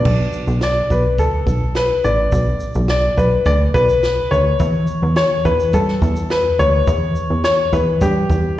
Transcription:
Already playing: nylon-string guitar B3 D4 F#4, upright piano D5
0.05 analog synth bass B1, kick, crash
0.33 shaker
0.47 analog synth bass B1, shaker
0.61 upright piano D5, snare, shaker
0.90 analog synth bass B1, upright piano B4, kick, shaker
1.18 analog synth bass D2, upright piano A4, kick, shaker
1.46 analog synth bass B1, kick, shaker
1.75 upright piano B4, snare, shaker
2.04 analog synth bass A1, upright piano D5, shaker
2.32 analog synth bass B1, kick, shaker
2.60 shaker
2.74 analog synth bass B1, shaker
2.88 upright piano D5, snare, shaker
3.17 analog synth bass B1, upright piano B4, kick, shaker
3.46 analog synth bass D2, upright piano D5, kick, shaker
3.74 analog synth bass B1, upright piano B4, kick, shaker
3.89 shaker
4.03 snare, shaker
4.31 analog synth bass D2, upright piano C#5, shaker
4.59 analog synth bass E2, kick, shaker
4.87 shaker
5.02 analog synth bass E2
5.16 upright piano C#5, snare, shaker
5.45 analog synth bass E2, upright piano B4, kick, shaker
5.60 shaker
5.73 analog synth bass G2, upright piano A4, kick, shaker
5.88 snare
6.02 analog synth bass E2, kick, shaker
6.16 shaker
6.30 upright piano B4, snare, shaker
6.59 analog synth bass D2, upright piano C#5, shaker
6.87 analog synth bass E2, kick, shaker
7.15 shaker
7.30 analog synth bass E2
7.44 upright piano C#5, snare, shaker
7.73 analog synth bass E2, upright piano B4, kick, shaker
8.01 analog synth bass G2, upright piano G4, kick, shaker
8.30 analog synth bass E2, kick, shaker

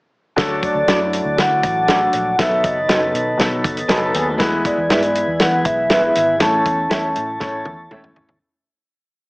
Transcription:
0.36 fingered electric bass D2, tonewheel organ F#3 D4 A4, grand piano F#3 A3 D4 A4, kick, snare, closed hi-hat
0.63 vibraphone D5, kick, closed hi-hat
0.75 fingered electric bass D2
0.87 fingered electric bass F#2, grand piano F#3 A3 D4 E4, clean electric guitar D4 F#4 A4 D5, snare, closed hi-hat
1.13 closed hi-hat
1.25 fingered electric bass D2
1.37 fingered electric bass D3, grand piano F#3 A3 D4 E4, vibraphone F#5, snare, closed hi-hat
1.63 fingered electric bass A1, kick, closed hi-hat
1.88 grand piano F#3 A3 D4 A4, clean electric guitar D4 F#4 A4 D5, vibraphone F#5, snare, closed hi-hat
2.13 fingered electric bass A#1, closed hi-hat
2.38 fingered electric bass B1, tonewheel organ D#3 B3, grand piano F#3 B3 D#4 A4, vibraphone E5, kick, snare, closed hi-hat
2.64 fingered electric bass F#1, vibraphone D#5, kick, closed hi-hat
2.89 fingered electric bass F#1, grand piano F#3 B3 C#4 A4, clean electric guitar B3 F#4 A4 D#5, snare, closed hi-hat
2.96 grand piano D#4
3.14 fingered electric bass B2, closed hi-hat
3.37 fingered electric bass B2, grand piano F#3 B3 D#4 A4, snare, closed hi-hat
3.64 fingered electric bass F#1, kick, closed hi-hat
3.77 closed hi-hat
3.88 fingered electric bass F#1, grand piano F#3 B3 D#4 G#4, clean electric guitar B3 D#4 F#4 A4 B4 D#5, snare, closed hi-hat
3.97 grand piano A4
4.14 fingered electric bass D#2, clean electric guitar B3 G#4, closed hi-hat
4.28 clean electric guitar A3 F#4
4.38 fingered electric bass E2, tonewheel organ E3 G#4, grand piano G#3 B3 E4 B4, kick, snare, closed hi-hat
4.65 vibraphone D5, kick, closed hi-hat
4.77 fingered electric bass E2
4.89 fingered electric bass G#2, grand piano G#3 B3 E4 B4, clean electric guitar E4 G#4 B4 E5, snare, closed hi-hat
5.02 closed hi-hat
5.15 closed hi-hat
5.27 fingered electric bass E2
5.40 fingered electric bass E3, grand piano G#3 B3 E4 B4, vibraphone F#5, snare, closed hi-hat
5.65 fingered electric bass B1, vibraphone E5, kick, closed hi-hat
5.90 grand piano G#3 B3 E4 B4, clean electric guitar E4 G#4 B4 E5, snare, closed hi-hat
6.15 fingered electric bass G#1, vibraphone E5, closed hi-hat
6.39 fingered electric bass A1, tonewheel organ E3 C#4 A4, grand piano A3 C#4 E4 C#5, vibraphone A5, kick, snare, closed hi-hat
6.66 fingered electric bass E2, kick, closed hi-hat
6.90 fingered electric bass E2, grand piano A3 C#4 E4 C#5, clean electric guitar E4 A4 C#5 E5, snare, closed hi-hat
7.16 fingered electric bass A2, closed hi-hat
7.40 fingered electric bass A2, grand piano A3 C#4 E4 C#5, kick, snare
7.65 fingered electric bass E2, high tom
7.91 fingered electric bass E2, grand piano A3 C#4 E4 C#5, clean electric guitar E4 A4 C#5 E5, mid tom
8.04 mid tom
8.16 fingered electric bass G#1, floor tom
8.29 floor tom

